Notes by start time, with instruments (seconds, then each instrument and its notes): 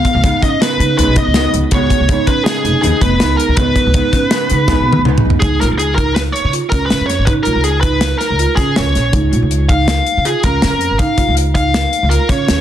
Already playing: hollow-body jazz guitar C#3 G#3 B3 D#4, marimba B3, lead electric guitar F5
0.05 kick, closed hi-hat
0.15 upright bass C#2
0.23 hollow-body jazz guitar C#3 G#3 B3 D#4, marimba D#4, kick, closed hi-hat
0.42 marimba C#4, lead electric guitar D#5, kick, closed hi-hat
0.60 hollow-body jazz guitar C#3 G#3 B3 D#4, lead electric guitar B4, snare, closed hi-hat
0.80 upright bass C#3, marimba D#4, closed hi-hat
0.98 upright bass C#2, hollow-body jazz guitar C#3 G#3 B3 D#4, lead electric guitar B4, closed hi-hat
1.08 upright bass B1
1.16 marimba B3, lead electric guitar D#5, kick, closed hi-hat
1.27 upright bass C#2
1.34 hollow-body jazz guitar C#3 G#3 B3 F#4, marimba D#4, snare, closed hi-hat
1.54 upright bass C#2, closed hi-hat
1.71 upright bass C#2, hollow-body jazz guitar C#3 G#3 B3 F#4, marimba B3, lead electric guitar C#5, kick, closed hi-hat
1.90 kick, closed hi-hat
2.00 upright bass C#2
2.09 hollow-body jazz guitar C#3 G#3 B3 D#4, marimba D#4, kick, closed hi-hat
2.27 marimba C#4, lead electric guitar B4, kick, closed hi-hat
2.44 hollow-body jazz guitar C#3 G#3 B3 D#4, lead electric guitar G#4, snare, closed hi-hat
2.64 upright bass F1, marimba D#4, closed hi-hat
2.82 upright bass D#2, hollow-body jazz guitar C#3 G#3 B3 D#4, lead electric guitar G#4, closed hi-hat
3.01 upright bass F1, marimba B3, lead electric guitar B4, kick, closed hi-hat
3.19 upright bass C#2, hollow-body jazz guitar C#3 G#3 B3 D#4, marimba D#4, snare, closed hi-hat
3.37 lead electric guitar A#4, closed hi-hat
3.48 upright bass C#2
3.57 upright bass C#2, hollow-body jazz guitar C#3 G#3 B3 D#4, marimba B3, lead electric guitar B4, kick, closed hi-hat
3.76 kick, closed hi-hat
3.86 upright bass C#2
3.94 hollow-body jazz guitar C#3 G#3 B3 D#4, marimba D#4, kick, closed hi-hat
4.13 marimba C#4, kick, snare, closed hi-hat
4.31 hollow-body jazz guitar C#3 G#3 B3 D#4, snare, closed hi-hat
4.50 upright bass C#3, marimba D#4, closed hi-hat
4.68 upright bass C#2, hollow-body jazz guitar C#3 G#3 B3 D#4, kick, snare
4.80 upright bass B1
4.87 marimba B3
4.93 high tom
4.98 upright bass C#2
5.05 hollow-body jazz guitar C#3 G#3 B3 D#4, marimba D#4, mid tom
5.18 mid tom
5.25 upright bass C#2
5.30 floor tom
5.40 upright bass C#2, marimba D#4, lead electric guitar G#4, kick, closed hi-hat
5.61 upright bass A#1, marimba F4, lead electric guitar A#4, snare, closed hi-hat
5.71 upright bass C#2
5.78 lead electric guitar G#4, closed hi-hat
5.95 marimba D#4, lead electric guitar A#4, kick, closed hi-hat
6.14 lead electric guitar B4, snare, closed hi-hat
6.32 lead electric guitar C#5, closed hi-hat
6.45 upright bass C#3
6.53 marimba F4, closed hi-hat
6.69 upright bass C#2, marimba C#4, lead electric guitar A#4, kick, closed hi-hat
6.86 lead electric guitar B4
6.90 upright bass C#3, marimba C#4, snare, closed hi-hat
7.00 upright bass F2
7.06 lead electric guitar C#5, snare, closed hi-hat
7.19 upright bass G#1
7.25 upright bass C#3, marimba D#4, lead electric guitar B4, kick, closed hi-hat
7.43 upright bass C#2, marimba F4, lead electric guitar A#4, closed hi-hat
7.55 upright bass C#2
7.64 lead electric guitar G#4, closed hi-hat
7.81 marimba D#4, lead electric guitar B4, kick, closed hi-hat
8.01 snare, closed hi-hat
8.18 lead electric guitar A#4, snare, closed hi-hat
8.30 upright bass C#2
8.39 marimba F4, closed hi-hat
8.56 upright bass C#3, marimba C#4, lead electric guitar G#4, kick, snare, closed hi-hat
8.76 upright bass C#2, marimba C#4, lead electric guitar C#5, snare, closed hi-hat
8.95 upright bass A#1, snare, closed hi-hat
9.12 upright bass C#2, marimba D#4, kick, closed hi-hat
9.32 upright bass A#1, marimba F4, closed hi-hat
9.42 upright bass C#2
9.51 closed hi-hat
9.69 marimba D#4, lead electric guitar F5, kick, closed hi-hat
9.88 snare, closed hi-hat
10.06 closed hi-hat
10.17 upright bass C#3
10.25 marimba F4, lead electric guitar G#4, closed hi-hat
10.43 upright bass C#2, marimba C#4, lead electric guitar A#4, kick, closed hi-hat
10.62 upright bass C#3, marimba C#4, snare, closed hi-hat
10.72 upright bass F2
10.81 closed hi-hat
10.91 upright bass G#1
10.99 upright bass C#3, marimba D#4, lead electric guitar F5, kick, closed hi-hat
11.18 upright bass C#2, marimba F4, kick, closed hi-hat
11.28 upright bass C#2
11.37 closed hi-hat
11.55 marimba D#4, lead electric guitar F5, kick, closed hi-hat
11.74 snare, closed hi-hat
11.93 closed hi-hat
12.03 upright bass C#2
12.09 marimba F4, lead electric guitar A#4, closed hi-hat
12.29 upright bass C#3, marimba C#4, lead electric guitar C#5, kick, snare, closed hi-hat
12.47 upright bass D#2, marimba C#4, snare, closed hi-hat